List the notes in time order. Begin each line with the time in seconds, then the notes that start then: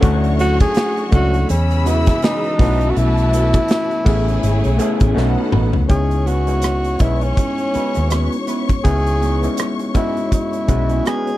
0.01 D2 F#3 A3 C#4 D4 E4 F#4 C#5 F#5 C#6, kick, closed hi-hat
0.24 closed hi-hat
0.39 C#4 F#4 A4, closed hi-hat
0.60 G#4, kick, closed hi-hat
0.74 muted clean electric guitar stroke, snare, closed hi-hat
0.97 muted clean electric guitar stroke, closed hi-hat
1.11 C#2 A3 C#4 D4 E4 F#4 A4, kick, closed hi-hat
1.34 muted clean electric guitar stroke, closed hi-hat
1.49 E2 C#3 E3 G#3 C#4 G#4 B5 E6, muted clean electric guitar stroke, closed hi-hat
1.71 muted clean electric guitar stroke, closed hi-hat
1.85 E3 G#3 B3 C#4 E4 F#4 B4, closed hi-hat
2.06 C#4 E4 G#4, kick, snare, closed hi-hat
2.22 C#4 D#4 E4 G#4, snare, closed hi-hat
2.44 muted clean electric guitar stroke, closed hi-hat
2.58 B1 B2 A3 B3 C#4 E4 F#4 B4 E5 A5, kick, snare, open hi-hat
2.81 muted clean electric guitar stroke, closed hi-hat
2.90 F#4
2.97 B1 E4, closed hi-hat
3.17 closed hi-hat
3.33 B3 E4 A4, closed hi-hat
3.53 kick, closed hi-hat
3.68 muted clean electric guitar stroke, snare, closed hi-hat
3.91 muted clean electric guitar stroke, closed hi-hat
4.05 A1 C#3 A3 B3 C#4 E4 G#4 C#5 G#5, kick, crash
4.28 muted clean electric guitar stroke, closed hi-hat
4.43 G#1, muted clean electric guitar stroke, closed hi-hat
4.64 B1, muted clean electric guitar stroke, closed hi-hat
4.78 A3 B3 C#4 E4 G#4 A4, closed hi-hat
5.00 A1 C#4 E4 G#4, kick, closed hi-hat
5.14 B1 D#3 A3 B3 C#4 D#4 F#4 A4 B4 F#5, snare
5.38 muted clean electric guitar stroke
5.52 A1 B3 D#4 B4, mid tom
5.73 C#2, muted clean electric guitar stroke, floor tom
5.88 C#2 G#3 B3 C#4 D#4 E4 G#4 C#5 C#6, kick, closed hi-hat
6.11 closed hi-hat
6.26 B3 E4 F#4 G#4, closed hi-hat
6.47 G#3 B3 C#4 D#4 E4, closed hi-hat
6.62 muted clean electric guitar stroke, cross-stick, closed hi-hat
6.84 muted clean electric guitar stroke, closed hi-hat
6.99 B1 G#3 B3 C#4 D#4 E4 G#4, kick, closed hi-hat
7.21 C#4, muted clean electric guitar stroke, closed hi-hat
7.37 muted clean electric guitar stroke, kick, closed hi-hat
7.58 muted clean electric guitar stroke, closed hi-hat
7.74 G#3 B3 C#4 D#4 E4 F#4 B4, muted fingered electric bass stroke, closed hi-hat
7.94 D#2 B3 E4 G#4, cross-stick, closed hi-hat
8.09 B3 E4 G#4, cross-stick, closed hi-hat
8.31 muted clean electric guitar stroke, closed hi-hat
8.47 B3 E4 B4, cross-stick, closed hi-hat
8.68 muted clean electric guitar stroke, kick, closed hi-hat
8.84 C#2 G#3 B3 C#4 D#4 E4 G#4, kick, closed hi-hat
9.07 closed hi-hat
9.21 B3 E4 G#4, closed hi-hat
9.42 G#3 B3 C#4 D#4 E4, closed hi-hat
9.57 muted clean electric guitar stroke, cross-stick, closed hi-hat
9.79 muted clean electric guitar stroke, closed hi-hat
9.94 G#3 B3 C#4 E4 F#4 G#4 D#5, kick, closed hi-hat
10.17 muted clean electric guitar stroke, closed hi-hat
10.32 E4, muted clean electric guitar stroke, kick, closed hi-hat
10.53 muted clean electric guitar stroke, closed hi-hat
10.68 B1 G#3 B3 C#4 E4 F#4 B4 D#5, kick, closed hi-hat
10.89 B3 E4 G#4, closed hi-hat
11.05 B3 E4 G#4, cross-stick, closed hi-hat
11.26 C#4 C#5, muted clean electric guitar stroke, closed hi-hat
11.34 D#4